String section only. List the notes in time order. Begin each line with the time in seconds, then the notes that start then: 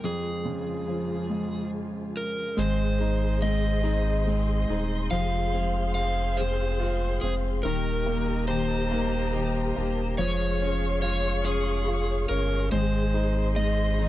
0.04 F2 C#3 F3 G#3 F4 G#4
2.57 G#4 C5 D#5 C6
5.10 G#4 C5 F5
7.66 G4 A#4 D#5 A#5
10.18 G#4 C#5 F5 C#6
12.72 C5 D#5 C6